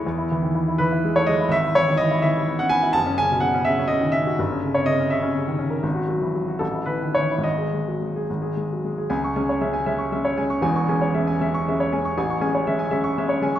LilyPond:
<<
  \new Staff \with { instrumentName = "Grand piano" } { \time 6/8 \key cis \minor \tempo 4. = 80 r4. b'8. cis''16 dis''8 | e''8 cis''8 dis''8 e''8. fis''16 gis''8 | a''8 gis''8 fis''8 e''8 dis''8 e''8~ | e''8. des''16 dis''8 e''8 r4 |
r4. a'8 b'8 cis''8 | dis''2~ dis''8 r8 | gis''16 cis'''16 gis''16 cis''16 e''16 gis''16 e''16 cis'''16 e''16 cis''16 gis''16 cis'''16 | gis''16 cis'''16 gis''16 cis''16 e''16 gis''16 e''16 cis'''16 e''16 cis''16 gis''16 cis'''16 |
gis''16 cis'''16 gis''16 cis''16 e''16 gis''16 e''16 cis'''16 e''16 cis''16 gis''16 cis'''16 | }
  \new Staff \with { instrumentName = "Grand piano" } { \clef bass \time 6/8 \key cis \minor e,16 e'16 e16 dis16 e16 e'16 e16 e'16 gis16 a16 gis16 e'16 | gis,,16 e'16 e16 dis16 e16 e'16 e16 e'16 b16 cis'16 b16 e'16 | fis,,16 cis'16 cis16 b,16 cis16 cis'16 cis16 cis'16 cis16 dis16 cis'16 fis'16 | g,,16 des'16 des16 bis,16 des16 des'16 des16 des'16 des16 dis16 des'16 bes'16 |
gis,,16 fis'16 fis16 e16 fis16 fis'16 a,,16 e'16 e16 dis16 e16 e'16 | gis,,16 gis'16 gis16 fis16 gis16 gis'16 gis,,16 gis'16 gis16 fis16 gis16 gis'16 | cis,8 <gis cis'>8 <gis cis'>8 <gis cis'>8 <gis cis'>8 <gis cis'>8 | <e,, e,>8 <gis cis'>8 <gis cis'>8 <gis cis'>8 <gis cis'>8 <gis cis'>8 |
a,,8 <gis cis'>8 <gis cis'>8 <gis cis'>8 <gis cis'>8 <gis cis'>8 | }
>>